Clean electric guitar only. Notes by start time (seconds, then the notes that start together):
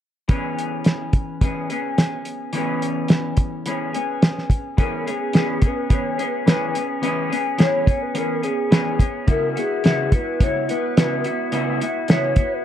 0.28 E3 B3 C#4
0.33 G#4
1.41 E3 B3 C#4 G#4
1.70 B3 C#4 G#4
2.53 E3 B3 C#4
2.57 G#4
3.66 E3 B3 C#4 G#4
3.93 B3 C#4 G#4
4.77 E3 B3 C#4 G#4
5.06 B3 C#4 G#4
5.34 E3 B3 C#4 G#4
5.61 B3 C#4 G#4
5.90 E3 B3 C#4 G#4
6.18 B3 C#4 G#4
6.46 E3 B3 C#4 G#4
6.73 B3 C#4 G#4
7.02 E3 B3 C#4 G#4
7.30 B3 C#4 G#4
7.58 E3 B3 C#4 G#4
7.86 B3 C#4 G#4
8.14 E3 B3 C#4 G#4
8.42 B3 C#4 G#4
8.71 E3 B3 C#4 G#4
8.99 B3 C#4 G#4
9.27 C#3 B3 E4 F#4
9.56 B3 E4 F#4
9.84 C#3 B3 E4 F#4
10.12 B3 E4 F#4
10.40 C#3 B3 E4 F#4
10.68 B3 E4 F#4
10.97 C#3 B3 E4 F#4
11.24 B3 E4 F#4
11.52 C#3 B3 E4 F#4
11.80 B3 E4 F#4
12.09 C#3 B3 E4 F#4
12.37 B3 E4 F#4